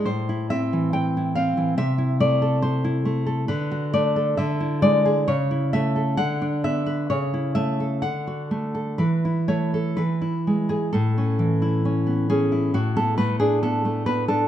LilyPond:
\new Staff \with { instrumentName = "Nylon-string guitar" } { \time 2/4 \key a \minor \tempo 4 = 67 << { c''8 e''8 g''8 f''8 | e''8 d''8 c''4 | \key a \major b'8 d''8 e''8 d''8 | cis''8 e''8 fis''8 e''8 |
cis''8 e''8 fis''4 | b'8 cis''8 b'8. gis'16 | a'4. gis'8 | fis'16 a'16 b'16 gis'16 a'8 b'16 a'16 | } \\ { a,16 e'16 c'16 e8 e'16 c'16 e16 | c16 e'16 a16 a'8 e'16 a16 a'16 | d16 fis'16 a16 a'16 d16 e'16 gis16 gis'16 | cis16 e'16 a16 a'16 d16 d'16 b16 b'16 |
cis16 e'16 a16 a'16 d16 fis'16 a16 a'16 | e16 e'16 a16 a'16 e16 e'16 gis16 gis'16 | a,16 cis'16 e16 e'16 cis'16 b16 cis'16 e'16 | a,16 b16 a16 d'16 b16 a16 b16 d'16 | } >> }